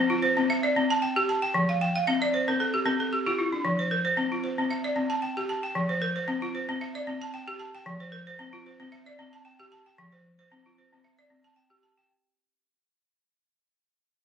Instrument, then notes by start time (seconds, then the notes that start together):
balafon
Already playing: C4 A#4 C5
0.10 F4
0.22 C5
0.37 C4
0.50 E5
0.63 D5
0.76 C4
0.90 A5
1.02 G5
1.16 G4
1.29 A5
1.42 G5
1.54 F3
1.69 F5
1.81 G5
1.96 F5
2.07 C4 E5
2.22 D5
2.34 C5
2.48 C4 A#4
2.60 A4
2.74 G4
2.85 C4 A#4
3.00 A4
3.13 G4
3.27 F4 G4
3.39 E4
3.52 D4
3.65 F3
3.79 C5
3.91 A#4
4.05 C5
4.17 C4
4.32 F4
4.44 C5
4.58 C4
4.71 E5
4.84 D5
4.96 C4
5.10 A5
5.22 G5
5.37 G4
5.49 A5
5.63 G5
5.75 F3
5.89 C5
6.02 A#4
6.16 C5
6.28 C4
6.42 F4
6.55 C5
6.69 C4
6.81 E5
6.95 D5
7.07 C4
7.22 A5
7.34 G5
7.48 G4
7.59 A5
7.75 G5
7.86 F3
8.00 C5
8.12 A#4
8.27 C5
8.39 C4
8.53 F4
8.66 C5
8.80 C4
8.92 E5
9.06 D5
9.19 C4
9.33 A5
9.45 G5
9.60 G4
9.72 A5
9.86 G5
9.98 F3
10.12 C5
10.39 C5
10.52 C4
10.66 F4
10.78 C5
10.93 C4
11.04 E5
11.19 D5
11.30 C4
11.44 A5
11.56 G5
11.70 G4
11.83 A5
11.98 G5